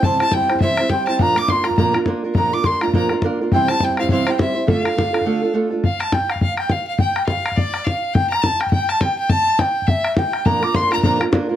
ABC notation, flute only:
X:1
M:4/4
L:1/8
Q:"Swing" 1/4=207
K:Bblyd
V:1 name="Flute"
a2 g2 e2 g2 | b d' c' b b z3 | b d' c' b b z3 | g a g f f g e2 |
f6 z2 | f a g f f g f f | g2 f2 d2 f2 | g b a g g a g g |
a2 g2 e2 g2 | b d' c' b b z3 |]